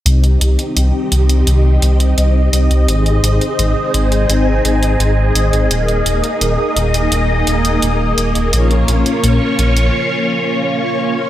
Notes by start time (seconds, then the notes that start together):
0.06 C2 C4 D#4 G4 D#5, closed hi-hat
0.24 closed hi-hat
0.41 C2, closed hi-hat
0.59 closed hi-hat
0.76 C2, closed hi-hat
1.12 C2, closed hi-hat
1.29 closed hi-hat
1.47 C2, closed hi-hat
1.82 C2, closed hi-hat
2.00 closed hi-hat
2.18 C2, closed hi-hat
2.53 C2, closed hi-hat
2.70 C2, closed hi-hat
2.88 G#1 C4 D#4 G#4, closed hi-hat
3.06 closed hi-hat
3.23 G#1, closed hi-hat
3.41 closed hi-hat
3.59 G#1, closed hi-hat
3.94 G#1, closed hi-hat
4.12 closed hi-hat
4.29 G#1, closed hi-hat
4.65 G#1, closed hi-hat
4.83 closed hi-hat
5.00 G#1, closed hi-hat
5.35 G#1, closed hi-hat
5.53 G#1, closed hi-hat
5.70 D#1 A#3 D#4 D#5, closed hi-hat
5.88 closed hi-hat
6.06 D#1, closed hi-hat
6.24 closed hi-hat
6.41 D#1, closed hi-hat
6.76 D#1, closed hi-hat
6.94 closed hi-hat
7.12 D#1, closed hi-hat
7.47 D#1, closed hi-hat
7.65 closed hi-hat
7.82 D#1, closed hi-hat
8.18 D#1, closed hi-hat
8.35 D#1, closed hi-hat
8.53 A#1 C#4 F4 C#5, closed hi-hat
8.71 closed hi-hat
8.88 A#1, closed hi-hat
9.06 closed hi-hat
9.24 A#1, closed hi-hat
9.59 A#1, closed hi-hat
9.77 closed hi-hat